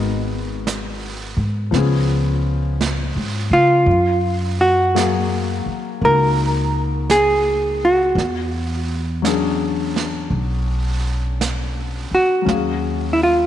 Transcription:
0.00 1.33 G#1 medium
0.00 1.72 G#3 soft
0.00 1.71 B3 soft
0.00 0.62 D#4 medium
0.00 1.74 F#4 soft
0.00 1.75 A#4 soft
0.67 brush sweep soft
0.67 snare soft
0.67 hi-hat pedal soft
1.37 1.69 G#2 medium
1.71 3.11 C#2 medium
1.71 3.86 F3 soft
1.71 3.86 B3 soft
1.71 3.87 C#4 soft
1.71 brush sweep soft
1.71 snare soft
1.76 3.88 G#4 soft
2.81 brush sweep soft
2.81 snare soft
2.81 hi-hat pedal soft
3.16 3.48 G#2 soft
3.51 3.84 C#3 medium
3.51 4.61 F4 medium
3.86 5.61 F#2 medium
3.86 brush sweep soft
4.61 6.05 F#4 medium
4.94 8.16 F#3 soft
4.94 6.00 A#3 soft
4.94 8.16 G#4 soft
4.94 8.16 F5 soft
4.94 brush sweep soft
4.94 snare soft
4.94 hi-hat pedal soft
5.66 muted upright bass stroke soft
6.01 8.12 C#2 medium
6.01 8.15 A#3 soft
6.01 8.16 D#4 soft
6.01 8.17 F#4 soft
6.01 7.11 A#4 medium
6.01 brush sweep soft
7.10 7.83 G#4 medium
7.10 brush sweep soft
7.10 snare soft
7.10 hi-hat pedal soft
7.85 8.86 F#4 medium
8.15 10.27 E2 medium
8.15 brush sweep soft
8.15 snare soft
9.22 12.40 F#3 soft
9.22 12.44 C#4 soft
9.22 12.48 D4 soft
9.22 brush sweep soft
9.22 snare soft
9.22 hi-hat pedal soft
9.27 12.49 G#4 soft
9.96 snare soft
10.30 12.07 B1 medium
10.30 brush sweep soft
11.41 brush sweep soft
11.41 snare soft
11.41 hi-hat pedal soft
12.11 13.13 F#4 medium
12.11 muted upright bass stroke soft
12.42 13.47 F#3 soft
12.42 13.47 C#4 soft
12.46 13.47 D#2 medium
12.46 13.47 F5 soft
12.46 brush sweep soft
12.46 snare soft
12.52 13.47 G#4 soft
13.13 13.21 E4 soft
13.23 13.47 F4 medium

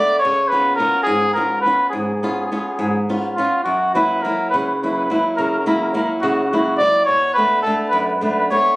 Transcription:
0.00 0.18 A3 soft
0.00 0.18 B3 soft
0.00 0.18 D4 medium
0.00 0.19 D5 loud
0.19 0.50 C#5 loud
0.25 0.79 C#3 medium
0.48 0.78 B3 medium
0.48 0.75 B4 medium
0.53 0.79 C#4 soft
0.53 0.79 F4 medium
0.76 1.25 B3 soft
0.76 1.03 A#4 medium
0.80 1.25 C#4 soft
0.80 1.25 F4 medium
1.03 1.62 G#2 medium
1.03 1.32 G#4 loud
1.34 1.65 B3 soft
1.34 1.65 C#4 soft
1.34 1.66 F4 soft
1.34 1.60 A#4 medium
1.61 1.89 B4 medium
1.66 2.11 B3 soft
1.66 2.12 C#4 soft
1.66 2.12 F4 medium
1.90 2.49 G#2 medium
1.90 1.98 G#4 medium
1.99 2.06 G#4 medium
2.07 2.14 G#4 medium
2.15 2.22 G#4 soft
2.23 2.50 B3 soft
2.23 2.51 C#4 soft
2.23 2.51 F4 medium
2.23 2.31 G#4 medium
2.32 2.38 G#4 soft
2.40 2.45 G#4 medium
2.46 2.53 G#4 soft
2.52 2.97 B3 soft
2.52 2.98 C#4 soft
2.52 2.98 F4 medium
2.52 2.60 G#4 medium
2.60 2.67 G#4 soft
2.68 2.73 G#4 medium
2.74 2.80 G#4 soft
2.79 3.35 G#2 medium
2.79 2.88 G#4 medium
2.89 2.97 G#4 medium
3.09 3.37 B3 soft
3.09 3.37 C#4 soft
3.09 3.38 F4 soft
3.36 3.60 B3 medium
3.36 3.60 C#4 soft
3.36 3.62 F4 medium
3.36 3.61 F4 soft
3.63 4.22 F#2 medium
3.63 3.92 F#4 medium
3.95 4.23 F#3 medium
3.95 4.24 A#3 soft
3.95 4.25 E4 medium
3.95 4.24 B4 medium
4.22 4.70 F#3 medium
4.22 4.71 A#3 soft
4.22 4.71 E4 soft
4.22 4.49 A#4 medium
4.50 4.58 B4 medium
4.54 5.09 C#3 medium
4.59 4.66 B4 medium
4.66 4.74 B4 soft
4.75 4.81 B4 soft
4.82 5.09 F#3 soft
4.82 5.09 A#3 soft
4.82 5.10 E4 soft
4.82 4.89 B4 medium
4.90 4.97 B4 soft
4.98 5.04 B4 medium
5.05 5.12 B4 medium
5.10 5.56 F#3 soft
5.10 5.56 A#3 soft
5.10 5.56 E4 medium
5.10 5.17 B4 medium
5.18 5.25 B4 medium
5.37 5.94 C#3 medium
5.37 5.42 A#4 medium
5.43 5.50 A#4 medium
5.51 5.58 A#4 medium
5.59 5.67 A#4 medium
5.66 5.93 F#3 soft
5.66 5.93 A#3 medium
5.66 5.94 E4 medium
5.66 5.74 A#4 medium
5.75 5.81 A#4 soft
5.82 5.87 A#4 medium
5.88 5.94 A#4 medium
5.94 6.40 F#3 soft
5.94 6.40 A#3 soft
5.94 6.41 E4 medium
5.94 6.03 A#4 medium
6.04 6.11 A#4 medium
6.21 6.78 C#3 medium
6.21 6.28 F#4 medium
6.29 6.34 F#4 medium
6.35 6.43 F#4 medium
6.44 6.50 F#4 medium
6.50 6.79 F#3 soft
6.50 6.80 A#3 soft
6.50 6.80 E4 medium
6.50 6.57 F#4 medium
6.57 6.64 F#4 medium
6.65 6.73 F#4 medium
6.77 7.03 F#3 soft
6.77 7.04 D5 loud
6.81 7.03 A#3 soft
6.81 7.03 E4 medium
7.05 7.64 B2 medium
7.05 7.33 C#5 loud
7.34 7.65 A3 soft
7.34 7.61 B4 medium
7.38 7.65 B3 soft
7.38 7.66 D4 medium
7.62 8.12 A3 medium
7.62 7.76 A4 medium
7.67 8.12 B3 soft
7.67 8.13 D4 medium
7.89 8.49 F#2 medium
7.89 7.98 B4 medium
8.00 8.07 B4 medium
8.08 8.15 B4 medium
8.15 8.23 B4 medium
8.21 8.50 A3 soft
8.21 8.50 B3 soft
8.21 8.51 D4 medium
8.21 8.31 B4 medium
8.31 8.38 B4 medium
8.39 8.46 B4 medium
8.51 8.76 A3 soft
8.51 8.76 B3 soft
8.51 8.76 D4 medium
8.51 8.76 C#5 loud

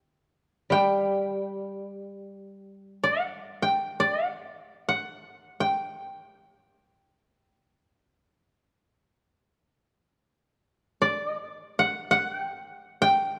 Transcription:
0.70 4.08 G3 soft
0.70 2.99 G5 medium
3.03 3.68 F#5 soft
3.62 4.06 G5 medium
4.00 4.27 D5 medium
4.27 4.88 F#5 medium
4.88 5.66 F#5 medium
5.60 7.79 G5 medium
11.02 12.62 D5 medium
11.79 12.11 F#5 medium
12.11 12.32 F#5 medium
12.32 13.01 G5 medium
13.02 13.39 G5 medium

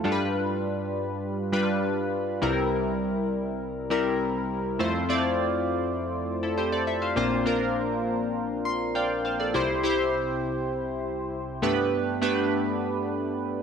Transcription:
0.04 2.38 G2 medium
0.04 0.98 G3 medium
0.04 0.98 D4 medium
0.04 0.98 F4 medium
0.04 0.11 A4 medium
0.12 1.01 B4 medium
1.52 2.23 G3 medium
1.52 2.23 D4 medium
1.52 2.23 F4 medium
1.52 2.23 B4 medium
2.42 4.76 C2 medium
2.42 4.76 C3 medium
2.42 3.35 G3 medium
2.42 3.35 C4 medium
2.42 3.35 E4 medium
2.42 3.36 A#4 medium
3.90 4.60 G3 medium
3.90 4.61 C4 medium
3.90 4.61 E4 medium
3.90 4.61 A#4 medium
4.79 7.13 F2 medium
4.79 5.03 A3 medium
4.79 5.03 C4 medium
4.79 5.03 E4 medium
4.79 5.03 F4 medium
4.79 5.03 C5 medium
5.09 6.02 A3 medium
5.09 6.02 C4 medium
5.09 6.03 E4 medium
5.09 6.03 F4 medium
5.09 6.03 D5 loud
6.43 6.57 E4 medium
6.43 6.57 A4 medium
6.58 6.72 G4 medium
6.58 6.72 C5 medium
6.72 6.86 A4 medium
6.72 6.87 D5 medium
6.87 7.02 A4 medium
6.87 7.01 E5 medium
7.02 7.16 C5 medium
7.02 7.30 F5 medium
7.16 9.51 A#1 medium
7.16 9.51 A#2 medium
7.16 7.40 A#3 medium
7.16 7.40 C4 medium
7.16 7.40 D4 medium
7.16 7.40 F4 medium
7.16 7.41 C5 medium
7.46 8.40 A#3 medium
7.46 8.40 C4 medium
7.46 8.40 D4 medium
7.46 8.40 F4 medium
7.46 8.40 A#4 loud
8.65 8.93 C6 medium
8.95 9.24 D5 medium
8.95 9.24 F5 medium
8.95 9.23 G5 medium
9.25 9.39 C5 medium
9.25 9.39 F5 medium
9.40 9.68 A4 medium
9.40 9.68 D5 medium
9.54 11.59 C2 medium
9.54 11.59 C3 medium
9.54 9.78 E4 medium
9.54 9.78 G4 medium
9.54 9.79 C5 medium
9.83 10.77 E4 medium
9.83 10.78 G4 medium
9.83 10.78 C5 loud
11.62 13.63 G2 medium
11.62 12.10 A3 medium
11.62 12.10 B3 medium
11.62 12.10 D4 medium
11.62 12.10 G4 medium
11.62 12.11 B4 medium
12.22 13.15 A3 medium
12.22 13.15 B3 medium
12.22 13.16 D4 medium
12.22 13.16 G4 medium
12.22 13.16 B4 loud

